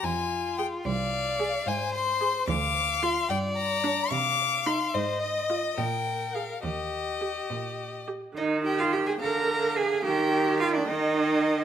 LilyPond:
<<
  \new Staff \with { instrumentName = "Violin" } { \time 6/8 \key ees \major \tempo 4. = 72 aes''4 g''8 f''4. | aes''8 c'''4 d'''4 c'''8 | g''8 bes''4 d'''4 c'''8 | c''8 ees''4 g''4 f''8 |
ees''2~ ees''8 r8 | r8 g''4 f''8 f''4 | r8 g''4. g''4 | }
  \new Staff \with { instrumentName = "Violin" } { \time 6/8 \key ees \major f'4. d''4. | c''4. f''4. | d''4. f''4. | ees''4. bes'4. |
g'2~ g'16 r8. | ees''8 g''16 f''16 g''16 aes''16 bes''4 aes''8 | g''4 f''16 d''16 ees''4. | }
  \new Staff \with { instrumentName = "Viola" } { \time 6/8 \key ees \major r4 aes'8 r4 aes'8 | r4 aes'8 r4 f'8 | r4 d'8 r4 ees'8 | r4 f'8 r4 aes'8 |
r4 g'8 r4 g'8 | ees4. d4. | ees4. ees4. | }
  \new Staff \with { instrumentName = "Cello" } { \time 6/8 \key ees \major f,4. c,4. | aes,4. d,4. | g,4. c4. | aes,4. bes,4. |
ees,4. bes,4. | ees'8 g'16 f'16 g'16 aes'16 bes'4 aes'8 | g'4 f'16 d'16 ees'4. | }
>>